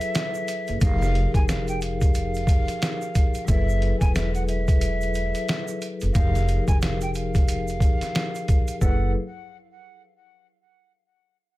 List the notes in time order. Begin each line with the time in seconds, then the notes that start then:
Already playing: F#3 E4 G#4 A4 B4 E5
0.01 closed hi-hat, shaker
0.15 snare, closed hi-hat, shaker
0.34 shaker
0.48 closed hi-hat, shaker
0.67 F#1, closed hi-hat, shaker
0.80 F1 F3 D#4 G4 F5, kick, closed hi-hat, shaker
0.85 G#4 A#4
1.02 snare, shaker
1.15 closed hi-hat
1.34 F1 G#5, kick, closed hi-hat, shaker
1.48 F5, snare, closed hi-hat, shaker
1.68 G5, closed hi-hat, shaker
1.81 F5, closed hi-hat, shaker
2.01 kick, closed hi-hat, shaker
2.15 closed hi-hat, shaker
2.34 closed hi-hat, shaker
2.47 kick, closed hi-hat, shaker
2.68 closed hi-hat, shaker
2.82 snare, closed hi-hat, shaker
3.02 shaker
3.15 kick, closed hi-hat, shaker
3.34 closed hi-hat, shaker
3.45 F#1 F#3 E4 G#4 E5, kick, closed hi-hat, shaker
3.49 A4 B4
3.69 shaker
3.82 closed hi-hat
4.00 E1 G#5, kick, closed hi-hat, shaker
4.15 E5, snare, closed hi-hat, shaker
4.34 F#5, closed hi-hat, shaker
4.47 E5, closed hi-hat, shaker
4.68 kick, closed hi-hat, shaker
4.81 closed hi-hat, shaker
5.01 closed hi-hat, shaker
5.14 closed hi-hat, shaker
5.35 closed hi-hat, shaker
5.48 snare, closed hi-hat, shaker
5.68 shaker
5.82 closed hi-hat, shaker
6.01 F#1, closed hi-hat, shaker
6.13 F1 F3 D#4 G4 F5, kick, closed hi-hat, shaker
6.18 G#4 A#4
6.35 snare, closed hi-hat, shaker
6.48 closed hi-hat, shaker
6.68 F1 G#5, kick, closed hi-hat, shaker
6.81 F5, snare, closed hi-hat, shaker
7.01 G5, closed hi-hat, shaker
7.14 F5, closed hi-hat, shaker
7.34 kick, closed hi-hat, shaker
7.48 closed hi-hat, shaker
7.68 closed hi-hat, shaker
7.80 kick, closed hi-hat, shaker
8.01 snare, closed hi-hat, shaker
8.15 snare, closed hi-hat, shaker
8.35 closed hi-hat, shaker
8.48 kick, closed hi-hat, shaker
8.68 closed hi-hat, shaker
8.81 F#1 F#3 E4 G#4 A4 B4 F#5, kick, shaker